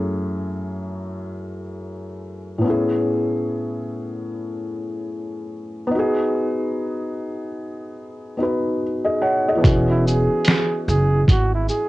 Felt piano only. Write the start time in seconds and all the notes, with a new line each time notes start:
Already playing: F#2 A3 C#4 E4 G#4
2.58 A2 B3
2.64 C#4 E4
2.70 G#4
5.87 B3
5.91 D#4 F#4
5.99 G#4
8.37 B3 D#4 F#4
8.43 B4
9.04 G#4 D#5
9.21 C#5 F#5
9.48 G#4 D#5
9.55 E3 B3
9.61 C#4 F#4
9.66 G#4